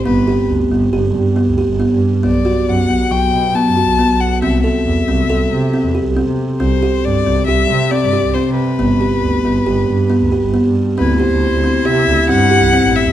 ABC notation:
X:1
M:5/4
L:1/16
Q:1/4=137
K:G
V:1 name="Violin"
B4 z16 | d4 f4 g4 a6 f2 | e2 e12 z6 | c4 d4 e4 d4 c2 B2- |
B16 z4 | B2 c6 e4 f6 e2 |]
V:2 name="Clarinet"
z16 z4 | z16 z4 | z16 z4 | z16 z4 |
z16 z4 | E16- E4 |]
V:3 name="Kalimba"
B,2 G4 B,2 G4 B,2 G2 B,4 | B,2 F4 B,2 F,4 B,2 F2 B,4 | C2 A4 C2 A4 C2 G2 C4 | C2 G4 C2 G4 C2 G2 C4 |
B,2 G4 B,2 G4 B,2 G2 B,4 | C2 G4 C2 G4 C2 G2 C4 |]
V:4 name="Double bass" clef=bass
G,,,2 z2 D,, z G,,,2 G,,, z G,,2 z D,,2 G,,,2 G,,2 z | B,,,2 z2 F,, z B,,,2 B,,, z B,,2 z F,,2 B,,,2 B,,,2 z | C,,2 z2 E,, z C,,2 C,, z C,2 z E,,2 C,,2 C,2 z | C,,2 z2 G,, z C,,2 C,, z C,2 z G,,2 C,,2 C,2 z |
G,,,2 z2 D,, z G,,,2 G,,, z G,,2 z D,,2 G,,,2 G,,2 z | D,,3 D,,2 D,,3 C,2 D,, z G,,2 z C,, z A,,, z D,, |]